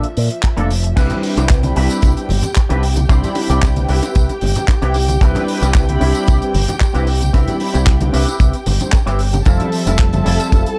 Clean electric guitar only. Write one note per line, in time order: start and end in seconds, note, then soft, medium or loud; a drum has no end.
0.43 muted clean electric guitar stroke medium
0.57 0.70 A#3 loud
0.57 0.70 D4 loud
0.57 0.70 F4 loud
0.57 0.70 A4 loud
0.83 muted clean electric guitar stroke soft
0.96 1.17 C4 loud
0.96 1.17 E4 loud
0.96 1.17 G4 medium
0.96 1.17 B4 loud
1.37 1.50 C4 medium
1.37 1.50 E4 medium
1.37 1.50 G4 medium
1.37 1.50 C5 loud
1.63 muted clean electric guitar stroke soft
1.76 2.17 C4 medium
1.76 2.17 E4 medium
1.76 2.17 G4 medium
1.76 2.17 B4 loud
2.56 muted clean electric guitar stroke medium
2.69 2.82 C4 loud
2.69 2.82 E4 medium
2.69 2.83 G4 loud
2.69 2.83 B4 loud
2.96 muted clean electric guitar stroke soft
3.09 3.29 C4 loud
3.09 3.29 E4 medium
3.09 3.29 G4 loud
3.09 3.30 C5 loud
3.49 3.62 C4 medium
3.49 3.62 E4 medium
3.49 3.62 G4 medium
3.49 3.62 D5 medium
3.76 muted clean electric guitar stroke soft
3.88 4.29 C4 medium
3.88 4.29 E4 medium
3.88 4.29 G4 medium
3.88 4.30 B4 medium
4.68 muted clean electric guitar stroke medium
4.82 4.95 C4 loud
4.82 4.95 E4 loud
4.82 4.95 G4 loud
4.82 4.95 B4 loud
5.09 muted clean electric guitar stroke soft
5.21 5.42 C4 loud
5.21 5.42 E4 loud
5.21 5.42 G4 loud
5.21 5.42 B4 loud
5.61 5.74 C4 medium
5.61 5.75 E4 medium
5.61 5.75 G4 medium
5.61 5.75 B4 medium
5.88 muted clean electric guitar stroke soft
6.00 6.41 C4 medium
6.00 6.41 E4 medium
6.00 6.42 G4 medium
6.00 6.42 C5 medium
6.80 muted clean electric guitar stroke medium
6.94 7.07 C4 loud
6.94 7.07 E4 medium
6.94 7.07 G4 loud
6.94 7.07 B4 loud
7.21 muted clean electric guitar stroke soft
7.33 7.54 C4 loud
7.33 7.54 E4 medium
7.33 7.54 G4 loud
7.33 7.54 B4 loud
7.74 7.87 C4 medium
7.74 7.87 E4 medium
7.74 7.87 G4 medium
7.74 7.87 C5 medium
8.00 muted clean electric guitar stroke soft
8.13 8.54 C4 loud
8.13 8.54 E4 medium
8.13 8.54 G4 medium
8.13 8.54 B4 medium
8.92 muted clean electric guitar stroke medium
9.06 9.19 C4 loud
9.06 9.19 E4 medium
9.06 9.20 G4 loud
9.06 9.20 B4 loud
9.33 muted clean electric guitar stroke soft
9.46 9.66 C4 loud
9.46 9.66 E4 medium
9.46 9.67 F4 loud
9.46 9.67 A4 loud
9.86 9.99 C4 medium
9.86 9.99 E4 medium
9.86 9.99 F4 medium
9.86 10.00 A4 medium
10.13 muted clean electric guitar stroke soft
10.25 10.66 C4 medium
10.25 10.66 E4 medium
10.25 10.66 F4 medium
10.25 10.66 A4 medium